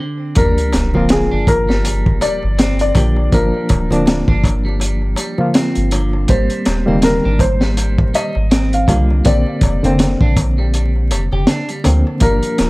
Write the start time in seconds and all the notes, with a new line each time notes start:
0.00 D3
0.35 G1 F3 G3 A#3 D4 A#4, kick, closed hi-hat, sub drop, darbuka tek
0.58 closed hi-hat, darbuka tek
0.72 D1, snare, closed hi-hat, darbuka tek
0.94 D1 F3 A#3 C4 F4, darbuka tek, darbuka dum
1.09 G#4, snare, closed hi-hat, darbuka tek
1.32 G1 D4, darbuka tek
1.47 A#4, kick, closed hi-hat, darbuka tek
1.69 G3, snare, darbuka tek
1.85 closed hi-hat, darbuka tek
2.06 kick, darbuka tek
2.21 G3 D5, closed hi-hat, darbuka tek
2.43 G1, darbuka tek
2.58 C4, snare, closed hi-hat, darbuka tek
2.79 D5, closed hi-hat, darbuka tek
2.95 A#1 D3 F3 A#3 G4, kick, closed hi-hat, darbuka tek
3.16 darbuka tek
3.32 G1 F3 G3 A#3 D4 A#4, kick, closed hi-hat, darbuka tek
3.54 darbuka tek
3.69 D1, kick, closed hi-hat, darbuka tek
3.91 D1 F3 A#3 C4 D4, closed hi-hat, darbuka tek, darbuka dum
4.06 snare, closed hi-hat, darbuka tek
4.28 G1 D4, kick, darbuka tek
4.44 kick, closed hi-hat, darbuka tek
4.65 G3, darbuka tek
4.80 closed hi-hat, darbuka tek
5.02 darbuka tek
5.16 G3, closed hi-hat, darbuka tek
5.38 F3 A#3 F4, darbuka tek, darbuka dum
5.54 C4, snare, closed hi-hat, darbuka tek
5.75 G1, closed hi-hat, darbuka tek
5.91 D3, closed hi-hat, darbuka tek
6.13 darbuka tek
6.28 G#1 G3 A#3 C4 C5, kick, closed hi-hat, darbuka tek
6.50 closed hi-hat, darbuka tek
6.65 D#1, snare, closed hi-hat, darbuka tek
6.86 D#1 D#3 G3 A#3 C4, darbuka tek, darbuka dum
7.02 A#4, snare, closed hi-hat, darbuka tek
7.25 G#1 D4, darbuka tek
7.39 C5, kick, closed hi-hat, darbuka tek
7.61 G3, snare, darbuka tek
7.77 closed hi-hat, darbuka tek
7.98 kick, darbuka tek
8.14 G3 D#5, closed hi-hat, darbuka tek
8.35 G#1, darbuka tek
8.51 C4, snare, closed hi-hat, darbuka tek
8.73 F5, closed hi-hat, darbuka tek
8.88 C2 D3 G3 A#3 F4, kick, closed hi-hat, darbuka tek
9.11 darbuka tek
9.25 A#1 D3 G3 A#3 C4 D5, kick, closed hi-hat, darbuka tek
9.47 darbuka tek
9.61 F1, kick, closed hi-hat, darbuka tek
9.83 F1 D3 A#3 C4, closed hi-hat, darbuka tek, darbuka dum
9.99 snare, closed hi-hat, darbuka tek
10.21 A#1 D4, kick, darbuka tek
10.37 kick, closed hi-hat, darbuka tek
10.58 G3, darbuka tek
10.74 closed hi-hat, darbuka tek
10.96 darbuka tek
11.11 F1 G3, closed hi-hat, darbuka tek
11.32 F1 G4, darbuka tek, darbuka dum
11.47 D4, snare, closed hi-hat, darbuka tek
11.69 G3, closed hi-hat, darbuka tek
11.84 D2 D3 F3 A#3 C4, closed hi-hat, darbuka tek
12.07 darbuka tek
12.20 G1 F3 G3 A#3 D4 F4 A#4, kick, closed hi-hat, darbuka tek
12.43 closed hi-hat, darbuka tek
12.58 D1, snare, closed hi-hat, darbuka tek